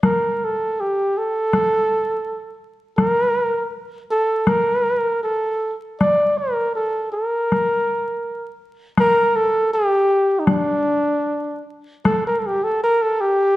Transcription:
0.03 0.46 A#4 medium
0.03 taiko rim medium
0.03 taiko high medium
0.45 0.82 A4 medium
0.80 1.20 G4 medium
1.18 2.62 A4 medium
1.53 taiko rim soft
1.53 taiko high soft
2.97 3.67 A#4 medium
2.97 taiko rim soft
2.97 taiko high soft
4.11 4.50 A4 medium
4.47 5.23 A#4 medium
4.47 taiko rim medium
4.47 taiko high medium
5.23 5.77 A4 medium
6.00 6.39 D5 medium
6.00 taiko rim soft
6.00 taiko high soft
6.38 6.75 A#4 medium
6.76 7.11 A4 medium
7.12 8.56 A#4 medium
7.52 taiko rim soft
7.52 taiko high soft
8.97 9.37 A#4 loud
8.97 taiko rim medium
8.97 taiko high medium
9.36 9.73 A4 medium
9.74 10.41 G4 medium
10.40 10.47 D#4 soft
10.46 11.65 D4 medium
10.46 taiko rim medium
10.46 taiko high medium
12.05 12.24 A4 medium
12.05 taiko rim medium
12.05 taiko high medium
12.27 12.41 A#4 medium
12.40 12.48 A4 medium
12.47 12.65 G4 medium
12.64 12.83 A4 medium
12.84 13.04 A#4 medium
13.02 13.22 A4 medium
13.21 13.56 G4 medium

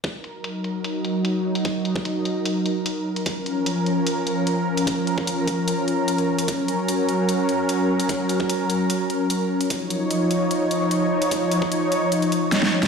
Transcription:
0.04 3.23 F#3 medium
0.04 3.23 D#4 medium
0.04 9.66 A#4 medium
0.04 kick loud
0.04 closed hi-hat medium
0.24 closed hi-hat medium
0.44 closed hi-hat medium
0.64 closed hi-hat medium
0.84 closed hi-hat medium
1.05 closed hi-hat medium
1.25 closed hi-hat medium
1.55 closed hi-hat medium
1.65 kick loud
1.65 closed hi-hat medium
1.85 closed hi-hat medium
1.96 kick loud
2.05 closed hi-hat medium
2.25 closed hi-hat medium
2.46 closed hi-hat medium
2.66 closed hi-hat medium
2.86 closed hi-hat medium
3.16 closed hi-hat medium
3.26 6.45 F3 medium
3.26 9.66 C#4 medium
3.26 kick loud
3.26 closed hi-hat medium
3.46 closed hi-hat medium
3.66 closed hi-hat medium
3.86 closed hi-hat medium
4.07 closed hi-hat medium
4.27 closed hi-hat medium
4.47 closed hi-hat medium
4.77 closed hi-hat medium
4.87 kick loud
4.87 closed hi-hat medium
5.07 closed hi-hat medium
5.18 kick loud
5.27 closed hi-hat medium
5.47 kick medium
5.47 closed hi-hat medium
5.68 closed hi-hat medium
5.88 closed hi-hat soft
6.08 closed hi-hat medium
6.18 closed hi-hat soft
6.38 closed hi-hat medium
6.48 9.67 F#3 medium
6.48 kick loud
6.48 closed hi-hat medium
6.68 closed hi-hat soft
6.88 closed hi-hat medium
7.09 closed hi-hat soft
7.29 closed hi-hat medium
7.49 closed hi-hat soft
7.69 closed hi-hat medium
8.00 closed hi-hat medium
8.09 kick loud
8.09 closed hi-hat medium
8.29 closed hi-hat soft
8.40 kick loud
8.50 closed hi-hat medium
8.70 closed hi-hat soft
8.90 closed hi-hat medium
9.10 closed hi-hat soft
9.30 closed hi-hat medium
9.61 closed hi-hat medium
9.70 12.88 F3 medium
9.70 12.88 D#4 medium
9.70 12.88 C#5 medium
9.70 kick loud
9.70 closed hi-hat medium
9.90 closed hi-hat medium
10.11 closed hi-hat medium
10.31 closed hi-hat soft
10.51 closed hi-hat medium
10.71 closed hi-hat soft
10.91 closed hi-hat medium
11.22 closed hi-hat medium
11.31 kick loud
11.31 closed hi-hat medium
11.52 closed hi-hat medium
11.62 kick medium
11.72 closed hi-hat medium
11.92 closed hi-hat medium
12.12 closed hi-hat medium
12.22 closed hi-hat soft
12.32 closed hi-hat medium
12.52 snare medium
12.52 closed hi-hat medium
12.63 snare medium
12.83 snare medium
12.83 closed hi-hat medium

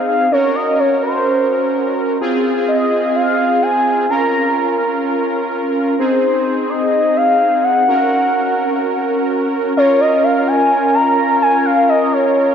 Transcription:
0.00 0.28 C4 medium
0.00 0.28 D#4 medium
0.00 0.28 G#4 medium
0.08 0.30 F5 loud
0.32 2.17 C#4 medium
0.32 2.17 F#4 medium
0.32 2.17 A#4 medium
0.32 0.57 C#5 medium
0.55 0.81 D#5 medium
0.79 1.02 C#5 medium
1.03 1.93 C5 medium
2.21 4.06 C4 medium
2.21 4.06 F4 medium
2.21 4.06 G#4 medium
2.68 3.12 D#5 medium
3.15 3.64 F5 loud
3.63 4.09 G#5 loud
4.10 5.95 C#4 medium
4.10 5.95 F4 medium
4.10 5.95 A#4 medium
4.10 4.77 A#5 loud
5.99 7.84 C4 medium
5.99 7.84 D#4 medium
5.99 7.84 G#4 medium
5.99 6.71 C5 medium
6.69 7.18 D#5 loud
7.17 7.65 F5 loud
7.64 9.29 F#5 loud
7.88 9.73 C#4 medium
7.88 9.73 F#4 medium
7.88 9.73 A#4 medium
9.77 12.55 C#4 medium
9.77 12.55 F4 medium
9.77 12.55 A#4 medium
9.77 10.02 C#5 medium
10.00 10.25 D#5 medium
10.24 10.49 F5 loud
10.48 10.96 G#5 loud
10.95 11.41 A#5 loud
11.42 11.67 G#5 loud
11.65 11.88 F5 loud
11.89 12.14 D#5 loud
12.13 12.55 C#5 medium

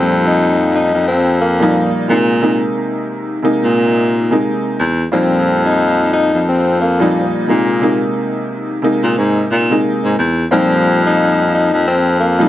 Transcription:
0.00 0.90 F2 loud
0.00 1.43 A#2 medium
0.00 1.44 F3 medium
0.00 1.44 G3 medium
0.00 0.23 C4 loud
0.00 1.44 D#4 loud
0.27 0.72 D#4 medium
0.75 1.05 D#4 medium
0.94 1.91 F2 medium
1.08 1.38 C4 medium
1.41 1.91 A#3 medium
1.60 2.05 A#2 medium
1.60 2.05 F3 medium
1.60 2.06 G3 medium
1.60 2.06 D#4 loud
2.08 2.64 A#2 loud
2.08 2.39 C3 medium
2.08 2.40 G#3 medium
2.08 2.41 A#3 medium
2.08 2.41 D#4 medium
2.41 3.36 C3 medium
2.41 3.36 G#3 medium
2.41 3.37 A#3 medium
2.41 3.37 D#4 medium
3.42 4.22 C3 medium
3.42 4.23 G#3 medium
3.42 4.23 A#3 medium
3.42 4.23 D#4 loud
3.64 4.41 A#2 medium
4.30 4.75 C3 medium
4.30 4.75 G#3 medium
4.30 4.76 A#3 medium
4.30 4.76 D#4 loud
4.79 5.06 E2 loud
5.12 6.29 F2 loud
5.12 6.83 A#2 medium
5.12 6.83 F3 medium
5.12 6.84 G3 medium
5.12 5.63 C4 loud
5.12 6.84 D#4 loud
5.66 6.11 D#4 medium
6.13 6.44 D#4 medium
6.33 7.30 F2 medium
6.49 6.78 C4 medium
6.81 7.31 A#3 medium
7.00 7.44 A#2 loud
7.00 7.45 F3 medium
7.00 7.45 G3 medium
7.00 7.46 D#4 loud
7.47 8.03 A#2 loud
7.47 7.79 C3 medium
7.47 7.80 G#3 medium
7.47 7.80 A#3 medium
7.47 7.80 D#4 medium
7.81 8.76 C3 medium
7.81 8.76 G#3 medium
7.81 8.76 A#3 medium
7.81 8.77 D#4 loud
8.82 9.62 C3 medium
8.82 9.62 G#3 medium
8.82 9.62 A#3 medium
8.82 9.63 D#4 loud
9.03 9.14 A#2 medium
9.17 9.44 G#2 medium
9.51 9.78 A#2 loud
9.70 10.14 C3 medium
9.70 10.15 G#3 medium
9.70 10.15 A#3 medium
9.70 10.15 D#4 loud
10.04 10.15 G#2 medium
10.18 10.45 E2 loud
10.51 11.69 F2 loud
10.51 12.22 A#2 medium
10.51 12.22 F3 medium
10.51 12.23 G3 medium
10.51 11.02 C4 loud
10.51 12.23 D#4 loud
11.06 11.51 D#4 medium
11.54 11.84 D#4 medium
11.73 12.49 F2 medium
11.87 12.17 C4 medium
12.20 12.49 A#3 medium
12.39 12.49 A#2 medium
12.39 12.49 F3 medium
12.39 12.49 G3 medium
12.39 12.49 D#4 loud

